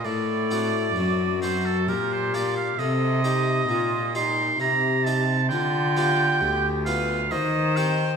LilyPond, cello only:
\new Staff \with { instrumentName = "Cello" } { \clef bass \time 3/4 \key g \minor \tempo 4 = 66 a,4 fis,4 bes,4 | c4 bes,4 c4 | d4 d,4 ees4 | }